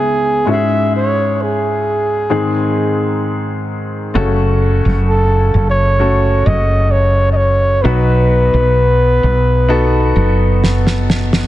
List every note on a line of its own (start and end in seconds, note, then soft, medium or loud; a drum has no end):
0.00 0.43 C#2 medium
0.00 0.43 G#2 medium
0.00 0.37 B3 medium
0.00 0.38 C#4 medium
0.00 0.38 E4 medium
0.00 0.52 G#4 medium
0.00 0.38 B4 medium
0.45 2.27 G#2 medium
0.45 2.21 G#3 medium
0.45 2.22 C#4 medium
0.45 2.22 E4 medium
0.45 0.53 F#4 medium
0.50 2.26 G#4 medium
0.50 0.95 E5 medium
0.96 1.44 C#5 medium
1.42 3.25 G#4 medium
2.30 4.11 G#2 medium
2.30 4.11 D#3 medium
2.30 4.06 G#3 medium
2.30 4.06 C4 medium
2.30 4.06 D#4 medium
2.30 4.07 G#4 medium
4.14 4.81 F#1 medium
4.14 5.50 C#3 medium
4.14 5.90 A3 medium
4.14 5.91 C#4 medium
4.14 5.91 F#4 medium
4.14 5.91 A4 medium
4.85 5.50 F#1 medium
5.09 5.66 A4 medium
5.54 6.43 F#1 medium
5.70 6.48 C#5 medium
5.99 7.75 A3 medium
5.99 7.75 C#4 medium
5.99 7.76 F#4 medium
5.99 7.76 A4 medium
6.46 7.81 F#1 medium
6.46 6.93 D#5 medium
6.91 7.31 C#5 medium
7.33 7.38 D#5 medium
7.37 7.84 C#5 medium
7.82 8.50 B1 medium
7.82 9.19 B2 medium
7.82 9.19 F#3 medium
7.82 9.60 B3 medium
7.82 9.60 D#4 medium
7.82 9.61 F#4 medium
7.82 11.07 B4 medium
7.82 9.61 B4 medium
8.54 9.19 B1 medium
9.23 10.12 B1 medium
9.68 11.45 B3 medium
9.68 11.45 D#4 medium
9.68 11.45 F#4 medium
9.68 11.45 A4 medium
10.16 11.47 F#1 medium
10.64 snare medium
10.87 snare medium
11.10 snare medium
11.33 snare medium